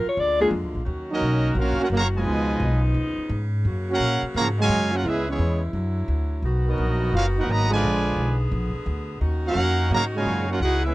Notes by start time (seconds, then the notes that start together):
Already playing: D#3 F#3 C#4 F4
0.05 C#5, muted upright bass stroke
0.17 D2 D3 G#3 A#3 D5
0.40 G#3 A#3 D4 F4 G#4
0.51 F2
0.63 D2
0.75 A#1
0.85 D#2 D#3 F#3 C#4 F#4
1.10 F#3 A#3 C#4 D#4 F#4 A#4 D#5
1.21 B1
1.55 A#1 A#3 C#4 F4 A#4 F5
1.59 C#4 F#4
1.78 A#3 C#4 F#4, muted upright bass stroke
1.82 C#4 F4 A#4 F#5
1.90 F#1 C#3 F#3 A#3
1.96 F#4 C#5 F5 A#5
2.16 B2 F3 G#3 F4 B4 D#5 G#5
2.25 C#2 C#3 F3 B3 D#4
2.60 B1
2.94 D#2
3.17 muted upright bass stroke
3.29 G#2
3.65 F#2 F#3 A#3 F#4
3.90 A#3 C#4 F#4 A#4 F5 F#5
4.00 A#2
4.22 muted upright bass stroke
4.34 G#2 C#3 F3 A#3 F#4 C#5 F5 A#5
4.58 C#3 F#3 G#3 F#4 C#5 F5 G#5
4.69 F#2
4.92 A#3 C#4 F4 F#4 A#4 F#5
5.03 C#2 G#3 B3 E4 G#4 B4 E5
5.07 C#4
5.27 E3 G#3 B3 C#4 E4 G#4 C#5
5.38 E2
5.73 F#2 D3 F#3
6.08 D2
6.42 B1 D#3 B3 F#4
6.67 F#3 B3 D#4 F#4 A#4 D#5
6.78 A#1
7.13 F#1 C#4 F4 F#4 A#4 F5
7.36 A#3 D#4 F#4 A#4 B4 F#5
7.46 G#1 D#3 F#3 A#3
7.50 F#4 B4 D#5 A#5
7.69 D3 F3 G#3 B4
7.74 F4 D5 G#5
7.81 A#1 D3 G#4
8.16 B1
8.51 A#1
8.75 muted upright bass stroke
8.86 D2
9.20 D#2 D#3 C#4 D#4 F#4
9.46 A#3 C#4 F#4 A#4 F5 F#5
9.55 F2
9.90 G#2 C#3 F#3 A#3 F#4 C#5 F5 A#5
10.14 A#2 C#3 G#3 F#4 C#5 F5 G#5
10.25 F#2
10.48 A#3 C#4 F4 F#4 A#4 F#5
10.59 C#2 C#3 G#3 B3 D#4 E4 F#4 G#4 B4 F#5
10.84 G#3 B3 C#4 E4 G#4 B4 E5